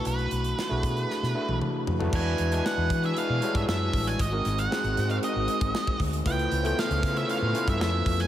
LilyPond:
<<
  \new Staff \with { instrumentName = "Lead electric guitar" } { \time 4/4 \key e \mixolydian \tempo 4 = 116 b'2. r4 | gis''8. gis''16 fis''8. e''16 f''8. e''16 e''8. gis''16 | dis''8. fis''4 f''16 dis''4. r8 | g''8. g''16 eis''8. e''16 eis''8. e''16 e''8. gis''16 | }
  \new Staff \with { instrumentName = "Tine electric piano" } { \time 4/4 \key e \mixolydian <a d' e' fis' b'>4 r16 <a d' e' fis' gis'>4 r16 <a d' e' fis' b'>4 r16 <a d' e' fis' b'>16 | <gis d' e' fis' b'>8. <gis d' e' fis' b'>4 r16 <gis d' e' fis' b'>8 <g gis d' e' fis' cis''>4. | r16 <gis bis dis' fis' bes'>8. <gis bis dis' fis' gis'>8. <gis bis dis' fis' bes'>4.~ <gis bis dis' fis' bes'>16 r8 | <a cis' e' eis' b'>8. <a b cis' eis' a'>4 r16 <a cis' e' eis' b'>8 <a cis' e' eis' b'>4. | }
  \new Staff \with { instrumentName = "String section" } { \time 4/4 \key e \mixolydian r1 | <e d' fis' gis'>1 | <gis bis>1 | <cis eis a b cis'>1 | }
  \new Staff \with { instrumentName = "Fingered electric bass" } { \clef bass \time 4/4 \key e \mixolydian b,,8 b,,8 r16 b,,16 b,8 r16 b,16 r16 b,,16 r8 f,8 | e,8 e,8 r16 e,16 e8 r16 b,16 r16 gis,16 fis,8 a,,8 | gis,,8 gis,,8 r16 gis,,16 gis,8 r16 gis,,16 r16 gis,,16 r8 d,8 | cis,8 cis,8 r16 cis,16 cis8 r16 a,16 r16 g,16 eis,8 eis,8 | }
  \new DrumStaff \with { instrumentName = "Drums" } \drummode { \time 4/4 hh16 hh16 hh16 hh16 sn8 <hh bd>16 hh16 sn16 sn8 tommh16 toml8 tomfh16 tomfh16 | <cymc bd>8 hh16 hh16 sn8 <hh bd>16 hh16 hh8 hh16 <hh bd>16 sn8 <hho bd>16 hh16 | <hh bd>8 <hh sn>16 hh16 sn16 hh16 <hh sn>16 hh16 hh8 hh16 <hh bd>16 sn16 bd16 <hho bd>16 hh16 | <hh bd>16 hh16 hh16 hh16 sn16 hh16 <hh bd sn>16 hh16 hh8 hh16 <hh bd>16 sn8 <hho bd>16 hh16 | }
>>